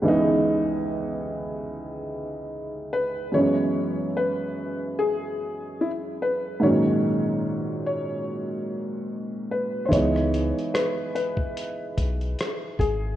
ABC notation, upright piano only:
X:1
M:4/4
L:1/8
Q:"Swing 16ths" 1/4=73
K:C#dor
V:1 name="Upright piano" clef=bass
[C,,E,G,B,D]8 | [F,,E,G,B,C]8 | [G,,A,,D,F,C]8 | [E,G,B,D]8 |]